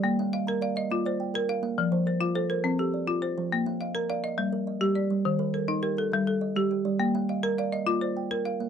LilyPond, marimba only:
\new Staff \with { instrumentName = "Marimba" } { \time 12/8 \key bes \major \tempo 4. = 138 << { d''8 r8 f''4 f''8 ees''4 c''4. f''4~ | f''8 r8 c''4 c''8 bes'4 g'4. c''4~ | c''8 r8 f''4 f''8 ees''4 r4. d''4~ | d''8 r8 bes'4 bes'8 a'4 a'4. r4 |
r4 f''4 f''8 ees''4 c''4. f''4 | } \\ { bes4 r8 bes'4 r8 f'4 r8 bes'4 r8 | f4 r8 f'4 r8 c'4 r8 f'4 r8 | bes4 r8 bes'4 r8 g4 r8 g'4 r8 | ees4 r8 ees'4 r8 g4 r8 g'4 r8 |
bes4 r8 bes'4 r8 f'4 r8 bes'4 r8 | } >> }